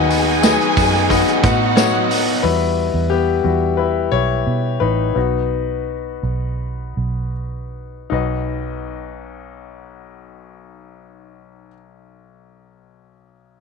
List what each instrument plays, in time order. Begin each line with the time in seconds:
Already playing: fingered electric bass D#2, overdriven electric guitar D#3 F#3 B3, grand piano D#3 D#4 F#4 B4 D#5 F#5, violin section G#4 G#5
0.10 overdriven electric guitar B3 D#4 F#4, hi-hat pedal, open hi-hat, tambourine
0.27 open hi-hat
0.43 overdriven electric guitar F#3 B3 D#4 F#4, grand piano D#4 F#4 B4 D#5 G#5, snare, hi-hat pedal, open hi-hat, tambourine
0.60 hi-hat pedal
0.77 fingered electric bass F#2, overdriven electric guitar B3 D#4 F#4, kick, hi-hat pedal, open hi-hat, tambourine
0.93 snare, open hi-hat
1.10 overdriven electric guitar D#3 F#3 B3 D#4 F#4, grand piano D#4 F#4 B4 D#5 F#5, kick, hi-hat pedal, open hi-hat, tambourine
1.27 hi-hat pedal
1.43 fingered electric bass A2, overdriven electric guitar B3 D#4 F#4, grand piano D#4 F#4 B4 D#5 F#5, violin section F#4 F#5, kick, hi-hat pedal, open hi-hat, tambourine
1.76 overdriven electric guitar F#3 B3 D#4 F#4, grand piano D#4 F#4 B4 C#5 D#5 F#5, snare, hi-hat pedal, open hi-hat, tambourine
2.10 overdriven electric guitar B3 D#4 F#4, hi-hat pedal, open hi-hat, tambourine
2.43 fingered electric bass E2, grand piano G3 E4 F#4 B4
2.94 fingered electric bass E2
3.10 grand piano B3 G4
3.44 fingered electric bass E2, grand piano G3 E4 F#4
3.77 grand piano E4 B4
4.12 fingered electric bass B1, grand piano E4 C#5
4.47 fingered electric bass B2
4.80 fingered electric bass A1, grand piano D#4 B4
5.15 fingered electric bass B1, grand piano B3 D#4 F#4
6.23 fingered electric bass B1
6.97 fingered electric bass B1
8.10 fingered electric bass B1, grand piano B1 D#4 F#4 B4
8.14 grand piano D#5